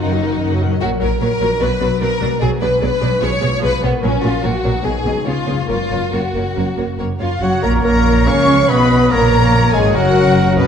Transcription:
Already playing: F#2 F#3 D#4 A#4
0.01 F#1 F#2 D#3 D#4 A#4 F#5
0.12 F#3 F#4 D#5
0.21 D#3 A#4 F#5
0.32 F#3 F#4 D#5
0.40 F#1 F#2 D#3 A#4 F#5
0.51 F#3 F#4 D#5
0.62 A#2 D#3 A#4 F#5
0.67 F#3 F#4
0.72 C#4 D#5
0.76 F#3 A#4
0.81 A#1 A#2 F#4 C#5
1.00 A#1 A#2 F#3 A#4 C#5
1.21 A#1 A#2 F#3 A#4 C#5
1.41 A#1 A#2 B2 F#3 A#4 C#5
1.47 F#3
1.52 D4
1.56 F#4 D5
1.61 B1 B2 F#3 F#4 B4
1.81 B1 B2 F#3 F#4 D5
2.00 B1 B2 F#3 F#4 A#4 D5
2.21 B1 B2 F#3 F#4 D5
2.28 G#3
2.32 D4
2.37 F#4 D5
2.41 B1 B2 F#3 G#4
2.61 B1 B2 F#3 G#4 B4 D5
2.81 B1 B2 F#3 G#4 B4 D5
3.00 B1 B2 F#3 G#4 D5
3.04 B2
3.09 G#3
3.13 C#4
3.18 F3 F4 G#4 C#5
3.22 B1 B2 C#5
3.40 B1 B2 F3 G#4 C#5
3.61 B1 B2 F3 G#4 B4 C#5
3.81 B1 A#2 B2 F3 B3 G#4 C#5
3.89 A#3
3.94 C#4
3.98 F#4
4.03 A#1 A#2 F#3 C#4 A#4 C#5
4.23 A#1 A#2 F#3 F4 A#4 C#5
4.42 A#1 A#2 F#3 F#4 A#4 C#5
4.63 A#1 A#2 B2 F#3 A#4 C#5
4.71 G#3
4.75 D#4
4.80 B2 F#3 F#4 D#5
4.84 B1 G#4
5.05 B1 B2 C#3 F#3 G#4 D#5
5.13 G#3
5.17 C#4
5.22 B4 C#5
5.26 C#2 C#3 B3 F4 G#4
5.47 C#2 C#3 B3 G#4 C#5
5.51 F#2
5.56 A#3
5.60 C#4
5.65 F#1 A#3 A#4
5.69 F#2 F4 C#5
5.90 F#1 F#2 A#3 A#4 C#5
6.12 F#1 F#2 A#3 F#4 A#4 C#5
6.34 F#1 F#2 A#3 A#4 C#5
6.55 F#1 F#2 A#3 A#4 C#5
6.77 F#1 F#2 A#3 A#4 C#5
6.98 F#1 F#2 A#3 A#4 C#5
7.20 F#1 F#2 A#3 F4 A#4 C#5 F5
7.41 F#1 F#2 F#3 F#4 C#5 F#5
7.53 C#3
7.62 A#1 A#2 A#3 A#4 A#5
7.75 C#4
7.83 A#1 A#2 A#3 A#4 A#5
7.96 C#4
8.06 C#5
8.26 C#2 F2 C#3 C#4 C#5 F5 C#6
8.38 F3
8.48 B3
8.68 B1 B2 B3 G#4 B4 D#5 B5
8.79 B4
8.90 C#5
9.01 G#5
9.11 A#1 F#2 A#2 A#3 A#4 C#5 A#5
9.22 C#3
9.43 C#4
9.53 F#4
9.63 A#4
9.73 G#1 G#2 G#3 G#4 C#5 G#5
9.84 F#5
9.93 F#1 F#2 F#3 F#4 A#4 C#5 F#5
10.04 A#4
10.15 C#4
10.26 C#3
10.36 A#3
10.46 C#3
10.56 B1 B2 A#3 B3 B4

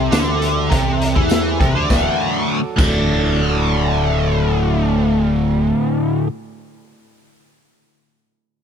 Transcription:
Already playing: C3 G3 A4 C5
0.12 D2 D3, snare, closed hi-hat, tambourine
0.42 closed hi-hat
0.70 C2 C3, kick, closed hi-hat
1.01 closed hi-hat
1.16 E2 E3, kick
1.29 snare, closed hi-hat, tambourine
1.60 C2 C3, kick, closed hi-hat
1.75 D2 D3
1.90 D1 D2 A2 D3 F#3 A3 D4 F#4 A4 D5, kick, snare, tambourine
2.76 D1 D2 A2 D3 A3, kick, crash, tambourine
2.81 F#4

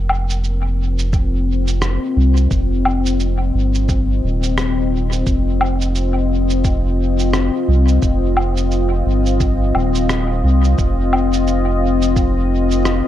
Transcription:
Already playing: F1 C4 A#4
0.04 F4
0.09 low woodblock
0.30 cabasa
0.44 cabasa
0.84 D#5
0.99 cabasa
1.13 kick, cabasa
1.68 cabasa
1.82 cross-stick, cabasa
2.17 C2
2.37 cabasa
2.51 F1, kick, cabasa
2.85 low woodblock
3.06 cabasa
3.20 cabasa
3.54 G1
3.75 cabasa
3.89 kick, cabasa
4.24 D#1
4.43 cabasa
4.58 cross-stick, cabasa
5.12 cabasa
5.26 F1, kick, cabasa
5.61 low woodblock
5.81 cabasa
5.95 cabasa
6.50 cabasa
6.64 kick, cabasa
7.19 cabasa
7.33 cross-stick, cabasa
7.68 C2
7.88 cabasa
8.02 F1, kick, cabasa
8.37 low woodblock
8.57 cabasa
8.71 cabasa
9.06 G1
9.26 cabasa
9.40 kick, cabasa
9.75 D#1, low woodblock
9.95 cabasa
10.09 cross-stick, cabasa
10.44 C2
10.64 cabasa
10.78 F1, kick, cabasa
11.13 low woodblock
11.33 cabasa
11.40 A#4
11.47 cabasa
12.02 cabasa
12.16 kick, cabasa
12.71 cabasa
12.85 cross-stick, cabasa

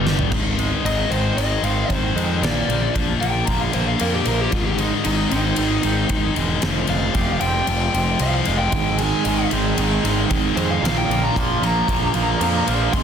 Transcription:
Already playing: G1 G2 D3 G3
0.07 snare
0.19 floor tom
0.31 G#1 G#2 D#3 G#3, kick, crash
0.58 G#2 D#3 G#3, ride
0.84 G#1 G#2 D#3 G#3 D#4 D#5, ride
1.10 G#1 G#2 D#3 G#3 C4 C5, ride
1.37 G#1 G#2 D#3 G#3 D#5, ride
1.63 G#1 G#2 D#3 G#3 C4 F5, ride
1.90 G#1 G#2 D#3 G#3 C5, kick, ride
2.15 F2 G#2 D#3 G#3, ride
2.42 A#1 A#2 F3 A#3 D5, snare, ride
2.68 A#1 A#2 F3 A#3, ride
2.94 A#1 A#2 F3 A#3 D4, kick, ride
3.21 A#1 A#2 F3 A#3 G5, ride
3.45 A#1 A#2 D3 F3 A#5, kick, ride
3.49 A#3
3.60 F5
3.73 A#1 A#2 F3 A#3 C5, ride
3.87 F5
3.99 F2 A#2 D3 F3 A#3 A#4, ride
4.14 G4
4.25 A#1 A#2 F3 A#3 A#4, ride
4.41 G4
4.51 G#1 G#2 D#3 G#3 F4, kick, ride
4.63 G4
4.78 G#2 D#3 G#3 D#4, ride
5.04 G#1 G#2 D#3 G#3 D#4, ride
5.30 G#1 G#2 D#3 G#3 C4 D#4, ride
5.56 G#1 G#2 D#3 G#3, ride
5.83 G#1 G#2 D#3 G#3 C4, ride
6.08 G#1 G#2 D#3 G#3, kick, ride
6.35 E1 G#2 D#3 G#3, ride
6.62 F1 F2 C3 F3, snare, ride
6.87 F1 F2 C3 F3 G#3 F5, ride
7.13 F1 F2 C3 F3 G4, kick, ride
7.40 F1 F2 C3 F3 C4 G5, ride
7.66 F1 F2 C3 F3, ride
7.93 F1 F2 C3 F3 C4, ride
8.19 C2 F2 C3 F3 F5, ride
8.34 F5
8.45 F1 F2 C3 F3 G#3, ride
8.58 G5
8.72 G#1 G#2 D#3 G#3, kick, ride
8.98 G#2 D#3 G#3 G#5, ride
9.24 G#1 G#2 D#3 G#3 D#4, ride
9.51 G#1 G#2 D#3 G#3 C4, ride
9.78 G#1 G#2 D#3 G#3, ride
10.04 G#1 G#2 D#3 G#3 C4, snare, ride
10.30 G#1 G#2 D#3 G#3, kick, ride
10.56 F2 G#2 D#3 G#3 C5, ride
10.71 F5
10.82 A#1 A#2 F3 A#3, ride
10.86 snare
10.97 G5
11.08 A#1 A#2 F3 A#3, ride
11.24 A#5
11.35 A#1 A#2 F3 A#3 D4 C6, kick, ride
11.61 A#1 A#2 F3 A#3 A#5, ride
11.88 A#1 A#2 D3 F3 A#3, kick, ride
12.14 A#1 A#2 F3 A#3, ride
12.40 F2 A#2 D3 F3 A#3, ride
12.68 A#1 A#2 F3 A#3, ride
12.93 G#1 G#2 D#3 G#3 C6, kick, ride

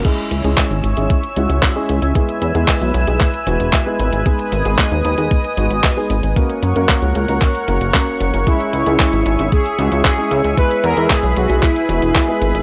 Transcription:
0.05 G#3 C#4 E4 G#4 C#5 E5 G#5 E6, kick, closed hi-hat, crash
0.18 closed hi-hat
0.31 C#2, closed hi-hat
0.44 C#2 G#3 C#4 E4 G#4, closed hi-hat
0.57 kick, clap, closed hi-hat
0.71 G#1, closed hi-hat
0.84 G#1, closed hi-hat
0.97 G#1 G#3 C#4 E4 G#4, closed hi-hat
1.10 kick, closed hi-hat
1.23 closed hi-hat
1.36 C#2 G#3 C#4 E4 F#4, closed hi-hat
1.50 C#2, closed hi-hat
1.63 kick, clap, closed hi-hat
1.76 G#3 C#4 E4 G#4
1.89 C#2, closed hi-hat
2.02 C#2, closed hi-hat
2.15 G#3 B3 E4 G#4 B4 E6, kick, closed hi-hat
2.29 closed hi-hat
2.42 E2, closed hi-hat
2.55 E2 G#3 B3 E4 G#4, closed hi-hat
2.68 kick, clap, closed hi-hat
2.81 B1, closed hi-hat
2.94 B1, closed hi-hat
3.07 B1 G#3 B3 E4 G#4, closed hi-hat
3.20 kick, clap, closed hi-hat
3.34 closed hi-hat
3.47 E1 G#3 B3 E4 F#4, closed hi-hat
3.60 E1, closed hi-hat
3.73 kick, clap, closed hi-hat
3.86 G#3 B3 E4 G#4
4.00 G#1, closed hi-hat
4.13 G#1, closed hi-hat
4.26 G#3 B3 D#4 G#4 D#5 D#6, kick, closed hi-hat
4.39 closed hi-hat
4.52 G#1, closed hi-hat
4.65 G#1 G#3 B3 D#4 G#4, closed hi-hat
4.78 kick, clap, closed hi-hat
4.92 D#2, closed hi-hat
5.05 D#2, closed hi-hat
5.18 D#2 G#3 B3 D#4 G#4, closed hi-hat
5.31 kick, closed hi-hat
5.44 closed hi-hat
5.57 G#1 G#3 B3 D#4 F#4, closed hi-hat
5.71 G#1, closed hi-hat
5.84 kick, clap, closed hi-hat
5.97 G#3 B3 D#4 G#4
6.10 G#1, closed hi-hat
6.23 G#1, closed hi-hat
6.36 A#3 C#4 F#4 A#4 C#5 F#5 C#6, kick, closed hi-hat
6.50 closed hi-hat
6.63 F#2, closed hi-hat
6.76 F#2 A#3 C#4 F#4 A#4, closed hi-hat
6.89 kick, clap, closed hi-hat
7.02 C#2, closed hi-hat
7.15 C#2, closed hi-hat
7.28 C#2 A#3 C#4 F#4 A#4, closed hi-hat
7.42 kick, clap, closed hi-hat
7.55 closed hi-hat
7.68 F#1 A#3 C#4 F#4 A#4, closed hi-hat
7.81 F#1, closed hi-hat
7.94 A#3 C#4 F#4 A#4, kick, clap, closed hi-hat
8.21 F#1, closed hi-hat
8.34 F#1 A#3 C#4 F#4 A#4, closed hi-hat
8.47 G#3 C#4 E4 G#4 E5, kick, closed hi-hat
8.60 closed hi-hat
8.73 C#2, closed hi-hat
8.86 C#2 G#3 C#4 E4 G#4, closed hi-hat
9.00 kick, clap, closed hi-hat
9.13 G#1, closed hi-hat
9.26 G#1, closed hi-hat
9.39 G#1 G#3 C#4 E4 G#4, closed hi-hat
9.52 G#4, kick, closed hi-hat
9.65 closed hi-hat
9.79 C#2 G#3 C#4 E4 F#4, closed hi-hat
9.92 C#2, closed hi-hat
10.05 G#4, kick, clap, closed hi-hat
10.18 G#3 C#4 E4 G#4
10.31 C#2, closed hi-hat
10.44 C#2, closed hi-hat
10.57 G#3 B3 E4 G#4 B4 B5, kick, closed hi-hat
10.71 closed hi-hat
10.84 E2 A#4, closed hi-hat
10.97 E2 G#3 B3 E4 G#4, closed hi-hat
11.10 G#4, kick, clap, closed hi-hat
11.23 B1, closed hi-hat
11.36 B1 F#4, closed hi-hat
11.50 B1 G#3 B3 E4 G#4, closed hi-hat
11.63 E4, kick, clap, closed hi-hat
11.76 closed hi-hat
11.89 E1 G#3 B3 E4 F#4, closed hi-hat
12.02 E1, closed hi-hat
12.15 kick, clap, closed hi-hat
12.28 G#3 B3 E4 G#4
12.42 G#1, closed hi-hat
12.55 G#1, closed hi-hat

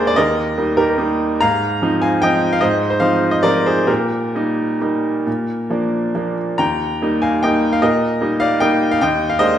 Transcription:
Already playing: D#2 G#3 A#3 D4 G#4 A#4 C5 D5 D#5 F5 G5
0.07 D5
0.16 D#2 A#4 D#5
0.57 G3 A#3 D#4
0.77 G4 A#4
0.97 G3 A#3 D#4
1.41 G#2 F5 A#5
1.82 F3 C4 D#4
2.02 F5 G#5
2.22 F3 C4 D#4 D#5 G5
2.53 F5
2.61 G#2 C5 D#5
2.90 C5
3.00 F3 C4 D#4 C5 F5
3.31 D#5
3.43 F3 C4 D#4 A#4 D5
3.66 G#4 C5
3.87 A#2 G4 A#4
4.35 G3 A#3 D#4
4.81 G3 A#3 D#4
5.27 A#2
5.70 F3 A#3 D4
6.15 F3 A#3 D4
6.58 D#2 G5 A#5
7.02 G3 A#3 D#4
7.22 F5 G#5
7.43 G3 A#3 D#4 D#5 G5
7.73 F5
7.82 A#2 A#4 D#5
8.21 G3 A#3 D#4
8.40 D5 F5
8.60 G3 A#3 D#4 D#5 G5
8.91 F5
9.01 D#2 D#5 G5
9.30 F5
9.39 G#3 A#3 D4 C5 D#5

